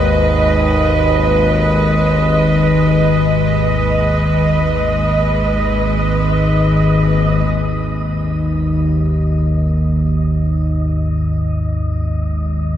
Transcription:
Already playing: synth drone G#1 D#2, cello section G#3 B4 D#5, synth texture D#5
7.45 synth drone G#1 D#2, synth texture D#5

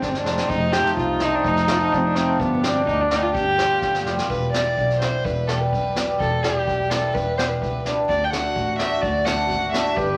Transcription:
Already playing: hammered dulcimer G#3, trombone D#4
0.02 double bass G1, violin D4, kick, snare
0.09 violin C4
0.15 violin D4, snare
0.24 double bass F1, hammered dulcimer G#3 C4 D#4, snare
0.38 snare
0.48 double bass F1, trombone D#4, violin D#4, kick
0.71 hammered dulcimer A3 C4 F4, violin G4, snare
0.86 snare
0.97 double bass C2, violin F4, kick
1.20 hammered dulcimer A3 C4 D#4, violin D#4, snare
1.35 violin D4
1.44 double bass F1, violin D#4, kick
1.56 snare
1.67 hammered dulcimer A3 C4 F4, violin F4, snare
1.81 violin D#4
1.92 double bass F1, violin D4, kick
1.98 violin C4
2.05 violin D4
2.14 hammered dulcimer A3 C4 F4, violin C4, snare
2.40 double bass G1, violin B3, trombone D4, kick
2.61 hammered dulcimer G3 B3 D4, violin C4, snare
2.87 double bass D2, violin D#4, kick
3.01 violin D4
3.08 hammered dulcimer G3 B3 D4, violin D#4, snare
3.23 violin F4
3.35 double bass G1, violin G4, kick
3.56 hammered dulcimer G3 B3 F4, snare
3.82 double bass G1, kick, snare
3.94 snare
4.04 double bass F1, hammered dulcimer G3 B3 F4, snare
4.18 snare
4.29 double bass E1, violin B4, kick
4.52 hammered dulcimer G3 B3 E4, violin D5, snare
4.78 double bass B1, kick
4.90 snare
4.99 hammered dulcimer G3 B3 E4, violin C5, snare
5.24 double bass E1, violin B4, kick
5.47 hammered dulcimer G3 B3 G4, violin A4, snare
5.60 violin B4
5.72 double bass B1, violin B4, kick
5.95 hammered dulcimer G3 B3 G4, snare
6.20 double bass E1, violin A4, kick
6.43 hammered dulcimer G3 B3 E4, violin G4, snare
6.67 double bass B1, kick
6.89 hammered dulcimer G3 B3 E4, violin A4, snare
7.14 double bass E1, violin B4, kick
7.37 hammered dulcimer G3 B3 E4, violin C5, snare
7.48 violin B4
7.60 double bass C#2, violin B4, kick
7.84 hammered dulcimer G3 B3 D4, snare
8.08 double bass D2, trombone F#4, violin D5, kick
8.24 violin G5
8.31 hammered dulcimer A3 D4 F#4, violin F#5, snare
8.56 double bass A1, kick
8.78 hammered dulcimer A3 D4 F#4, violin E5, snare
9.01 double bass D2, violin D5, kick
9.24 hammered dulcimer A3 D4 F#4, violin F#5, snare
9.49 double bass G#1, trombone F#4, kick
9.71 hammered dulcimer A3 D4 E4, violin E5, snare
9.96 double bass G1, trombone G4, violin B4, kick

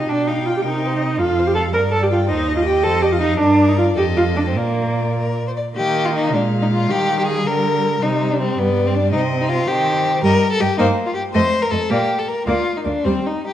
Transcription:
Already playing: viola D#4, violin D#5
0.09 cello B2, viola D4, violin D5 G5
0.28 viola D#4, violin F5
0.47 viola F4, violin G5
0.57 viola G4
0.65 cello C3, viola D#4, violin A#4
0.86 violin C5
1.03 violin D#5
1.19 cello F2, viola F4, violin A4 F5
1.39 violin C5
1.47 viola G4
1.55 viola A4, violin F5
1.73 cello G2, viola A#4, violin A#4 D5
1.92 viola A4, violin D5
2.03 viola G4
2.11 viola F4, violin G5
2.29 cello D#2, viola D#4, violin C5 D#5
2.49 violin D#5
2.57 viola F4
2.66 viola G4, violin G5
2.84 cello F2, viola A4, violin C5
3.02 viola G4, violin D#5
3.12 viola F4
3.21 viola D#4, violin F5
3.40 cello G2, viola D4, violin A#4 D5
3.69 viola D#4
3.78 viola F4
3.96 cello F2, viola G4, violin A4 D#5
4.17 viola F4
4.36 viola D4
4.47 viola C4
4.57 cello A#2, viola A#3, violin A#4 D5
5.17 violin A#4
5.47 violin C5
5.57 violin D5
5.76 cello D#3, viola A#3, violin G4 D#5
6.05 violin F4
6.14 violin D#4
6.33 cello A#2, viola G#3, violin D4 F5
6.62 violin D#4
6.72 violin F4
6.89 cello D#3, viola G3, violin G4
7.19 violin G4
7.27 violin G#4
7.47 cello D3, violin A#4
8.02 cello C3, viola G3, violin D#4 C5
8.31 violin D4
8.40 violin C4
8.58 cello G2, violin B3 D5
8.86 violin C4
8.94 violin D4
9.12 cello C3, viola C4, violin D#4 D#5
9.41 violin D#4
9.49 violin F4
9.68 cello D#3, viola C4, violin G4 C5
10.23 cello G2, viola G3, violin A#4 D#5
10.52 violin A4
10.60 cello G2, viola G3, violin G4 D#5
10.78 cello G2, viola A#3, violin D#4 C5
11.06 violin F4
11.14 violin G4
11.33 cello F2, viola A3, violin C5 D#5
11.62 violin A#4
11.71 cello F2, viola A3, violin A4 D#5
11.89 cello A#2, viola A#3, violin G4 D5
12.19 violin A4
12.28 violin A#4
12.47 cello D2, viola A#3, violin F4 D5
12.77 violin D#4
12.85 cello D2, viola A#3, violin D4 D5
13.04 cello D#2, viola G3, violin C4 C5
13.26 violin D#4
13.47 violin G4

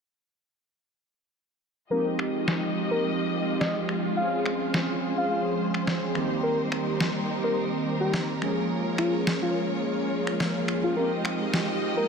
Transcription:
1.90 analog polysynth F3 G#3 C4 D#4 G4, string section G#3 F4 G4 D#5, soft synth lead A#4
2.19 finger snap
2.48 snare
2.91 soft synth lead A#4
3.60 soft synth lead D#5, snare
3.89 finger snap
4.16 analog polysynth F3 G#3 C4 C#4 G#4, string section C5, soft synth lead F5
4.46 finger snap
4.74 snare
5.18 soft synth lead F5
5.30 soft synth lead F5
5.74 finger snap
5.87 snare
6.14 analog polysynth D#3 G3 A#3 C4 G4, string section G3 D#4 A#4, finger snap
6.43 soft synth lead A#4
6.72 finger snap
7.00 snare
7.44 soft synth lead A#4
8.01 soft synth lead G4
8.14 snare
8.41 analog polysynth F3 G#3 A#3 C#4 G#4, string section G#3 F4 C#5, finger snap
8.98 soft synth lead F4, finger snap
9.27 snare
9.42 soft synth lead F4
10.27 finger snap
10.40 snare
10.68 finger snap
10.84 soft synth lead F4
10.96 analog polysynth F3 G#3 C4 D#4 G4, string section G4 D#5, soft synth lead A#4
11.25 finger snap
11.54 snare
11.97 soft synth lead A#4

